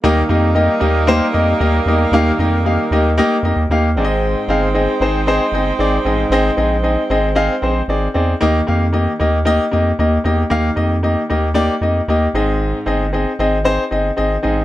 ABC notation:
X:1
M:4/4
L:1/16
Q:1/4=114
K:Eb
V:1 name="Grand piano"
[B,EGe]2 [B,EGe]2 [B,EGe]2 [B,EGe]2 [B,EGc]2 [B,EGe]2 [B,EGe]2 [B,EGe]2 | [B,EGf]2 [B,EGe]2 [B,EGf]2 [B,EGe]2 [B,EGe]2 [B,EGe]2 [B,EGf]2 [CEAde]2- | [CEAde]2 [CEAf]2 [CEAe]2 [CEAc]2 [CEAc]2 [CEAe]2 [CEAd]2 [CEAe]2 | [CEAe]2 [CEAe]2 [CEAe]2 [CEAe]2 [CEAf]2 [CEAc]2 [CEAd]2 [CEAd]2 |
[B,EGe]2 [B,EGf]2 [B,EGe]2 [B,EGe]2 [B,EGe]2 [B,EGe]2 [B,EGe]2 [B,EGe]2 | [B,EGf]2 [B,EGe]2 [B,EGe]2 [B,EGe]2 [B,EGd]2 [B,EGe]2 [B,EGe]2 [CEAe]2- | [CEAe]2 [CEAe]2 [CEAe]2 [CEAe]2 [CEAc]2 [CEAe]2 [CEAe]2 [CEAe]2 |]
V:2 name="Grand piano" clef=bass
E,6 z8 z2 | E,6 z8 A,,2- | A,,4 z8 z2 A,,2- | A,,4 z12 |
E,6 z8 z2 | E,6 z8 A,,2- | A,,4 z8 z2 A,,2 |]
V:3 name="Horn section"
[G,B,EB]16- | [G,B,EB]12 z2 [A,CEc]2- | [A,CEc]16- | [A,CEc]12 z4 |
z16 | z16 | z16 |]
V:4 name="Analog synth bass" clef=bass
E,,2 F,,4 E,,4 F,,2 E,,2 _F,,2 | E,,2 F,,4 E,,3 z F,, E,, E,,2 A,,,2- | A,,,2 G,,,4 A,,,4 G,,,2 A,,,2 =A,,,2 | A,,,2 B,,,4 A,,,4 B,,,2 A,,,2 _F,,2 |
E,,2 F,,4 E,,4 F,,2 E,,2 _F,,2 | E,,2 F,,4 E,,4 F,,2 E,,2 A,,,2- | A,,,2 G,,,4 A,,,4 G,,,2 A,,,2 =A,,,2 |]